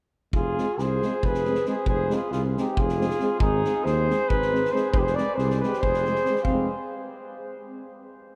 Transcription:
0.32 0.58 F1 medium
0.32 0.82 F4 medium
0.32 0.83 G#4 medium
0.32 kick medium
0.58 0.66 G#3 soft
0.58 0.66 C4 soft
0.58 snare soft
0.78 1.03 C2 medium
0.78 1.27 G#4 medium
0.78 1.27 C5 medium
0.78 snare soft
1.02 1.11 G#3 medium
1.02 1.12 C4 medium
1.02 snare soft
1.23 1.58 F1 medium
1.23 1.68 G#4 medium
1.23 1.69 B4 loud
1.23 kick medium
1.34 snare soft
1.45 1.54 G#3 soft
1.45 1.55 C4 medium
1.45 snare soft
1.55 snare soft
1.66 1.75 G#3 medium
1.66 1.74 C4 medium
1.66 1.87 G#4 medium
1.66 1.87 C5 medium
1.66 snare soft
1.86 2.11 F1 medium
1.86 2.15 G#4 medium
1.86 2.16 C5 medium
1.86 kick medium
2.09 2.18 G#3 medium
2.09 2.20 C4 medium
2.09 snare soft
2.14 2.31 F4 medium
2.14 2.32 G#4 medium
2.31 2.56 C2 medium
2.31 2.42 F4 medium
2.31 2.44 G#4 medium
2.31 snare soft
2.57 2.65 G#3 medium
2.57 2.65 C4 medium
2.57 2.77 D#4 medium
2.57 2.82 G4 medium
2.57 snare soft
2.76 3.12 F1 medium
2.76 3.39 F4 medium
2.76 kick medium
2.81 3.39 G#4 medium
2.89 snare soft
3.00 3.08 G#3 medium
3.00 3.08 C4 medium
3.00 snare soft
3.10 snare soft
3.20 3.29 G#3 medium
3.20 3.28 C4 medium
3.20 snare soft
3.40 3.65 G#1 loud
3.40 3.88 D#4 medium
3.40 3.86 G#4 medium
3.40 kick loud
3.64 3.73 G#3 medium
3.64 3.73 C4 soft
3.64 snare soft
3.84 4.10 D#2 medium
3.84 4.30 G#4 medium
3.84 4.30 C5 medium
3.84 snare soft
4.08 4.18 G#3 medium
4.08 4.16 C4 medium
4.08 snare soft
4.29 4.65 G#1 medium
4.29 4.72 G#4 medium
4.29 4.73 B4 loud
4.29 kick medium
4.42 snare soft
4.51 4.59 G#3 medium
4.51 4.61 C4 medium
4.51 snare soft
4.65 snare soft
4.72 4.81 G#3 medium
4.72 4.81 C4 medium
4.72 4.92 G#4 medium
4.72 4.91 C5 medium
4.76 snare soft
4.91 5.17 F1 medium
4.91 5.00 G#4 medium
4.91 4.99 C5 medium
4.91 kick loud
4.97 5.06 G4 medium
4.97 5.02 B4 medium
4.97 5.17 C5 loud
5.04 5.18 G#4 medium
5.04 snare soft
5.15 5.25 G#3 medium
5.15 5.25 C4 medium
5.15 5.38 B4 medium
5.15 5.36 D5 medium
5.15 snare soft
5.35 5.62 C2 loud
5.35 5.61 G#4 medium
5.35 5.59 C5 medium
5.35 snare soft
5.51 snare soft
5.60 5.71 G#3 medium
5.60 5.70 C4 medium
5.60 5.82 B4 medium
5.60 snare soft
5.64 5.84 G4 medium
5.73 snare soft
5.81 6.17 F1 medium
5.81 6.44 G#4 medium
5.81 6.43 C5 loud
5.81 kick medium
5.94 snare soft
6.04 6.14 G#3 soft
6.04 6.12 C4 medium
6.04 snare soft
6.15 snare soft
6.24 6.32 C4 soft
6.24 snare soft
6.29 6.36 G#3 medium
6.36 snare soft
6.43 6.68 F1 medium
6.43 6.67 C4 medium
6.43 6.66 F5 medium
6.43 kick medium
6.49 6.69 G#3 medium

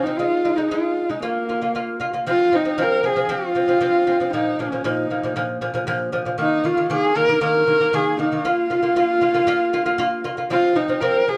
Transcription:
0.03 0.17 F3 medium
0.03 0.17 C4 medium
0.03 0.19 D#4 medium
0.17 0.40 G#3 medium
0.17 0.40 D#4 medium
0.17 0.57 F4 medium
0.45 0.56 G#3 medium
0.45 0.56 D#4 medium
0.56 0.68 G#3 medium
0.56 0.70 D#4 medium
0.56 0.69 D#4 medium
0.68 1.02 G#3 medium
0.68 1.03 D#4 medium
0.68 1.11 F4 medium
1.09 1.20 G#3 medium
1.09 1.22 D#4 medium
1.09 1.21 D#4 medium
1.22 1.43 A#3 medium
1.22 1.97 A#3 medium
1.22 1.44 F4 medium
1.49 1.59 A#3 medium
1.49 1.60 F4 medium
1.62 1.72 A#3 medium
1.62 1.72 F4 medium
1.75 1.96 A#3 medium
1.75 1.96 F4 medium
2.00 2.11 A#3 medium
2.00 2.11 F4 medium
2.13 2.24 A#3 medium
2.13 2.24 F4 medium
2.27 2.47 F3 medium
2.27 2.48 C4 medium
2.27 2.57 F4 loud
2.52 2.62 F3 medium
2.52 2.63 C4 medium
2.52 2.84 D#4 medium
2.65 2.76 F3 medium
2.65 2.76 C4 medium
2.78 2.99 F3 medium
2.78 2.99 C4 medium
2.83 3.07 A#4 medium
3.03 3.14 F3 medium
3.03 3.14 C4 medium
3.03 3.33 G#4 medium
3.16 3.27 F3 medium
3.16 3.27 C4 medium
3.29 3.50 F3 loud
3.29 3.50 C4 loud
3.29 4.33 F4 loud
3.55 3.66 F3 medium
3.55 3.66 C4 medium
3.68 3.79 F3 medium
3.68 3.79 C4 medium
3.81 4.02 F3 medium
3.81 4.02 C4 medium
4.07 4.17 F3 medium
4.07 4.18 C4 medium
4.20 4.30 F3 medium
4.20 4.31 C4 medium
4.33 4.54 A#2 medium
4.33 4.54 F3 medium
4.33 4.62 D#4 medium
4.59 4.69 A#2 medium
4.59 4.70 F3 medium
4.59 4.87 C#4 medium
4.72 4.82 A#2 medium
4.72 4.83 F3 medium
4.84 5.05 A#2 loud
4.84 5.05 F3 loud
4.84 5.37 D#4 medium
5.10 5.21 A#2 medium
5.10 5.21 F3 medium
5.23 5.34 A#2 medium
5.23 5.34 F3 medium
5.36 5.57 A#2 medium
5.36 5.57 F3 loud
5.61 5.72 A#2 medium
5.61 5.72 F3 medium
5.74 5.85 A#2 medium
5.74 5.85 F3 medium
5.87 6.08 A#2 loud
5.87 6.08 F3 loud
6.12 6.23 A#2 medium
6.12 6.23 F3 medium
6.25 6.36 A#2 medium
6.25 6.37 F3 medium
6.38 6.59 D#3 medium
6.38 6.60 A#3 medium
6.38 6.68 D#4 loud
6.64 6.75 D#3 medium
6.64 6.75 A#3 medium
6.64 6.91 F4 medium
6.77 6.88 D#3 medium
6.77 6.88 A#3 medium
6.90 7.11 D#3 medium
6.90 7.11 A#3 loud
6.90 7.19 G#4 medium
7.15 7.26 D#3 medium
7.15 7.26 A#3 medium
7.15 7.43 A#4 loud
7.28 7.39 D#3 medium
7.28 7.40 A#3 medium
7.41 7.62 D#3 medium
7.41 7.62 A#3 loud
7.41 7.97 A#4 loud
7.67 7.78 D#3 medium
7.67 7.78 A#3 medium
7.80 7.91 D#3 medium
7.80 7.91 A#3 medium
7.93 8.14 D#3 medium
7.93 8.14 A#3 loud
7.93 8.20 G#4 medium
8.19 8.29 D#3 medium
8.19 8.30 A#3 medium
8.19 8.47 D#4 medium
8.32 8.42 D#3 medium
8.32 8.43 A#3 medium
8.45 8.66 A#3 medium
8.45 8.66 F4 medium
8.45 10.26 F4 loud
8.70 8.81 A#3 medium
8.70 8.81 F4 medium
8.83 8.94 A#3 medium
8.83 8.94 F4 medium
8.96 9.17 A#3 medium
8.96 9.17 F4 medium
9.21 9.32 A#3 medium
9.21 9.33 F4 medium
9.34 9.45 A#3 medium
9.34 9.46 F4 medium
9.47 9.68 A#3 loud
9.47 9.69 F4 loud
9.73 9.84 A#3 medium
9.73 9.84 F4 medium
9.86 9.97 A#3 medium
9.86 9.97 F4 medium
9.98 10.20 A#3 loud
9.98 10.20 F4 loud
10.24 10.35 A#3 medium
10.24 10.36 F4 medium
10.37 10.48 A#3 medium
10.37 10.49 F4 medium
10.50 10.71 F3 medium
10.50 10.72 C4 medium
10.50 10.77 F4 loud
10.75 10.87 F3 medium
10.75 10.87 C4 medium
10.75 11.03 D#4 medium
10.88 11.00 F3 medium
10.88 11.00 C4 medium
11.01 11.23 F3 medium
11.01 11.23 C4 loud
11.01 11.30 A#4 medium
11.28 11.37 F3 medium
11.28 11.37 C4 medium
11.28 11.37 G#4 medium

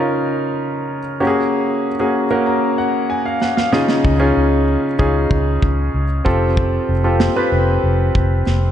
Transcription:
0.00 1.22 C#3 medium
0.00 1.21 C#4 medium
0.00 1.22 D#4 medium
0.00 1.22 F4 medium
0.00 1.22 A#4 medium
1.20 1.86 A#3 medium
1.20 1.86 C#4 medium
1.20 1.86 F#4 medium
1.20 1.27 G4 medium
1.27 1.89 G#4 medium
1.99 2.26 A#3 medium
1.99 2.26 C#4 medium
1.99 2.26 F#4 medium
1.99 2.26 G#4 medium
2.31 3.36 A#3 medium
2.31 3.36 C#4 medium
2.31 3.36 F#4 medium
2.31 3.36 A#4 medium
2.46 2.76 A#5 medium
2.78 3.07 F#5 medium
3.10 3.24 G#5 medium
3.26 3.40 F5 medium
3.41 3.56 F#5 medium
3.41 snare soft
3.57 3.72 F5 medium
3.57 snare medium
3.73 4.63 C#3 medium
3.73 4.12 C#4 medium
3.73 4.12 D#4 medium
3.73 4.12 F4 medium
3.73 4.12 G#4 medium
3.73 4.02 D#5 medium
3.73 snare medium
3.89 snare medium
4.05 4.31 C#2 loud
4.05 kick medium
4.20 4.85 C#4 medium
4.20 4.85 D#4 medium
4.20 4.86 F4 medium
4.20 4.86 G#4 medium
4.37 4.75 C#2 medium
4.99 5.25 C#2 medium
4.99 6.04 C#4 medium
4.99 6.04 D#4 medium
4.99 6.04 F4 medium
4.99 6.04 G#4 medium
4.99 kick medium
5.31 5.57 C#2 medium
5.31 kick medium
5.62 5.88 C#2 medium
5.62 kick medium
5.94 6.20 C#2 medium
6.25 6.78 F1 medium
6.25 6.91 C4 medium
6.25 6.91 F4 medium
6.25 6.91 G4 medium
6.25 6.91 A4 medium
6.25 kick medium
6.57 kick medium
6.89 7.28 F1 medium
7.04 7.31 C4 medium
7.04 7.31 F4 medium
7.04 7.31 G4 medium
7.04 7.31 A4 medium
7.20 snare medium
7.36 8.41 C4 medium
7.36 8.41 F4 medium
7.36 8.41 G4 medium
7.36 8.41 B4 medium
7.52 7.78 F1 medium
7.84 8.09 F1 medium
8.15 8.41 F1 medium
8.15 kick medium
8.46 8.71 F1 medium
8.46 snare soft

